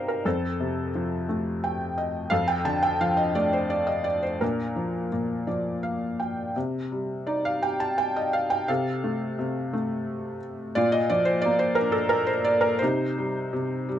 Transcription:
Already playing: C3 G3 D#4 G4 A#4 C5 D5 D#5 F5 G5
0.08 A#4
0.25 F2 C4 A4
0.60 C3
0.95 F3
1.29 A3
1.64 G5
1.98 D#5
2.30 F2 A4 F5
2.48 G5
2.65 D3 A5
2.83 G5
3.01 F3 F5
3.17 D#5
3.35 A3 D5
3.53 C5
3.70 D5
3.87 D#5
4.04 D5
4.23 C5
4.41 A#2 D4 A#4
4.76 F3
5.12 A#2
5.47 F3 D5
5.83 F5
6.20 G5
6.56 C3
6.92 G3
7.27 D#4 D5
7.45 F5
7.62 G4 G5
7.80 A5
7.98 G5
8.16 D#5
8.33 F5
8.50 G5
8.68 C3 A4 F5
9.04 A3
9.39 C3
9.73 A3
10.75 A#2 F4 D5
10.92 D#5
11.10 F3 D5
11.25 C5
11.42 A#3 D5
11.59 C5
11.75 D4 A#4
11.92 A4
12.09 A#4
12.27 C5
12.45 D5
12.61 A#4
12.79 C3 C5
12.83 D#4
13.18 G3
13.53 C3
13.89 G3

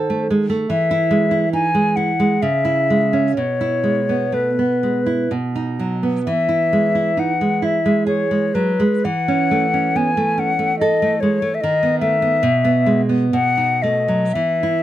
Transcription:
Already playing: D#3 A4 C5
0.10 A3
0.30 G#3
0.50 A3
0.70 E3 E5
0.91 E4
1.11 G#3
1.31 E4
1.53 D#4 G#5
1.75 G#3
1.96 E4 F#5
2.20 G#3
2.42 C#3 E5
2.65 E4
2.90 G#3
3.13 C#4
3.36 B2 C#5
3.61 E4
3.84 G#3
4.09 B3
4.32 A3 B4
4.59 B3
4.83 G#3
5.06 E4
5.31 B2
5.55 D#4
5.80 F#3
6.03 B3
6.26 E3 E5
6.49 E4
6.73 G#3
6.95 E4
7.17 D#4 F#5
7.41 G#3
7.62 E4 E5
7.86 G#3
8.07 G#4 C#5
8.31 G#3
8.54 F#3 B4
8.80 G#3
9.05 E3 F#5
9.28 C#4
9.51 A3
9.74 C#4
9.96 B3 G#5
10.17 A3
10.38 C#4 F#5
10.59 A3
10.79 A4 D#5
11.02 A3
11.20 G#3 C#5
11.42 A3
11.55 E5
11.61 D#3 D#5
11.83 B3
12.00 A3 E5
12.22 B3
12.43 B2
12.64 B3
12.86 G#3
13.09 B3
13.32 B2 F#5
13.57 D#4
13.82 A3 D#5
14.08 F#3
14.33 E3 E5
14.63 E4

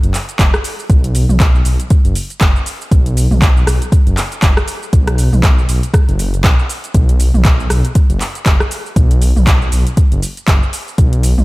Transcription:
0.03 F#1, closed hi-hat, shaker
0.14 clap, open hi-hat, shaker
0.29 closed hi-hat, shaker
0.39 F#1, kick, clap, closed hi-hat, shaker
0.54 cross-stick, shaker
0.64 open hi-hat, shaker
0.79 shaker
0.90 B1, kick, closed hi-hat, shaker
1.04 closed hi-hat, shaker
1.15 open hi-hat, shaker
1.29 B1, mid tom, shaker
1.40 kick, clap, closed hi-hat, shaker
1.55 shaker
1.65 B1, open hi-hat, shaker
1.80 closed hi-hat, shaker
1.90 kick, closed hi-hat, shaker
2.05 F#1, closed hi-hat, shaker
2.15 open hi-hat, shaker
2.30 closed hi-hat, shaker
2.41 F#1, kick, clap, closed hi-hat, shaker
2.56 shaker
2.66 open hi-hat, shaker
2.81 shaker
2.91 B1, kick, closed hi-hat, shaker
3.06 closed hi-hat, shaker
3.17 open hi-hat, shaker
3.31 B1, mid tom, shaker
3.42 kick, clap, closed hi-hat, shaker
3.57 shaker
3.67 B1, cross-stick, open hi-hat, shaker
3.82 closed hi-hat, shaker
3.92 kick, closed hi-hat, shaker
4.06 F#1, closed hi-hat, shaker
4.17 clap, open hi-hat, shaker
4.32 closed hi-hat, shaker
4.42 F#1, kick, clap, closed hi-hat, shaker
4.57 cross-stick, shaker
4.68 open hi-hat, shaker
4.83 shaker
4.93 B1, kick, closed hi-hat, shaker
5.07 cross-stick, closed hi-hat, shaker
5.18 open hi-hat, shaker
5.33 B1, mid tom, shaker
5.43 kick, clap, closed hi-hat, shaker
5.59 shaker
5.69 B1, open hi-hat, shaker
5.83 closed hi-hat, shaker
5.94 kick, cross-stick, closed hi-hat, shaker
6.08 F#1, closed hi-hat, shaker
6.19 open hi-hat, shaker
6.34 closed hi-hat, shaker
6.44 B1, kick, clap, closed hi-hat, shaker
6.59 shaker
6.69 open hi-hat, shaker
6.84 closed hi-hat, shaker
6.94 B1, kick, closed hi-hat, shaker
7.09 closed hi-hat, shaker
7.20 open hi-hat, shaker
7.34 B1, mid tom, shaker
7.45 kick, clap, closed hi-hat, shaker
7.60 shaker
7.70 B1, cross-stick, open hi-hat, shaker
7.85 closed hi-hat, shaker
7.95 kick, closed hi-hat, shaker
8.10 F#1, closed hi-hat, shaker
8.21 clap, open hi-hat, shaker
8.35 closed hi-hat, shaker
8.46 F#1, kick, clap, closed hi-hat, shaker
8.60 cross-stick, shaker
8.71 open hi-hat, shaker
8.86 shaker
8.96 B1, kick, closed hi-hat, shaker
9.11 closed hi-hat, shaker
9.22 open hi-hat, shaker
9.36 B1, mid tom, shaker
9.47 kick, clap, closed hi-hat, shaker
9.62 shaker
9.72 B1, open hi-hat, shaker
9.87 closed hi-hat, shaker
9.97 kick, closed hi-hat, shaker
10.12 F#1, closed hi-hat, shaker
10.22 open hi-hat, shaker
10.37 closed hi-hat, shaker
10.48 F#1, kick, clap, closed hi-hat, shaker
10.63 shaker
10.73 open hi-hat, shaker
10.88 shaker
10.98 B1, kick, closed hi-hat, shaker
11.13 closed hi-hat, shaker
11.23 open hi-hat, shaker
11.38 B1, mid tom, shaker

